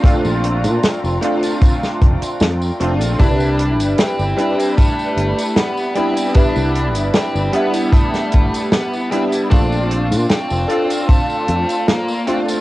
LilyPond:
<<
  \new Staff \with { instrumentName = "String section" } { \time 4/4 \key c \major \tempo 4 = 76 << { <f' d'' bes''>1 | <e' b''>1~ | <e' b''>1 | <f' d'' f''>1 | } \\ { g''1~ | g''1 | a''1~ | a''1 | } >> }
  \new Staff \with { instrumentName = "Electric grand piano" } { \time 4/4 \key c \major <a c' d' f'>4. <a c' d' f'>2 <a c' d' f'>8 | <g d' e' b'>4. <g d' e' b'>2 <g b d' e'>8 | <g d' e' b'>4. <g b d' e'>2 <g b d' e'>8 | <a c' d' f'>4. <c' d' f' a'>2 <a c' d' f'>8 | }
  \new Staff \with { instrumentName = "Lead electric guitar" } { \time 4/4 \key c \major r1 | d'4 c'4 a4 b8 c'8 | d'4 c'8 b8 a4 b8 c'8 | d'4 c'4 a4 bes8 c'8 | }
  \new Staff \with { instrumentName = "Fretless electric bass" } { \clef bass \time 4/4 \key c \major r16 bes,,8 bes,16 r16 f,,16 r4 f,,16 r16 f,16 r16 f,,16 bes,,16 | c,8. g,,16 r16 g,,16 r4 g,,16 r4 r16 | r16 c,8 g,,16 r16 g,,16 r4 g,,16 r4 r16 | bes,,8. bes,16 r16 f,,16 r4 f,16 r4 r16 | }
  \new DrumStaff \with { instrumentName = "Drums" } \drummode { \time 4/4 <hh bd tamb>16 tamb16 hh16 <hh tamb>16 <hh sn tamb>16 tamb16 hh16 <hh tamb>16 <hh bd tamb>16 <sn tamb>16 <hh bd>16 <hh tamb>16 <hh sn tamb>16 tamb16 hh16 <hh tamb>16 | <hh bd tamb>16 tamb16 hh16 <hh tamb>16 <hh sn tamb>16 tamb16 hh16 <hh tamb>16 <hh bd tamb>16 tamb16 hh16 <hh tamb>16 <hh sn tamb>16 tamb16 hh16 <hh tamb>16 | <hh bd tamb>16 tamb16 hh16 <hh tamb>16 <hh sn tamb>16 tamb16 hh16 <hh tamb>16 <hh bd tamb>16 <sn tamb>16 <hh bd>16 <hh tamb>16 <hh sn tamb>16 tamb16 hh16 <hh tamb>16 | <hh bd tamb>16 tamb16 hh16 <hh tamb>16 <hh sn tamb>16 tamb16 hh16 <hh tamb>16 <hh bd tamb>16 tamb16 hh16 <hh tamb>16 <hh sn tamb>16 tamb16 hh16 <hh tamb>16 | }
>>